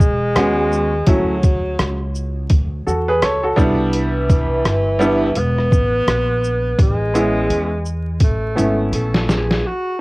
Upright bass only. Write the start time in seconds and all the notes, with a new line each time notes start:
0.00 E1
0.36 D#2
1.07 D2
1.79 C#2
2.50 D2
2.87 E2
3.23 C#2
3.58 C2
4.65 G1
5.36 E1
5.72 A1
6.07 A#1
6.79 A1
7.50 E2
8.21 A1
8.57 G#1
8.92 A#1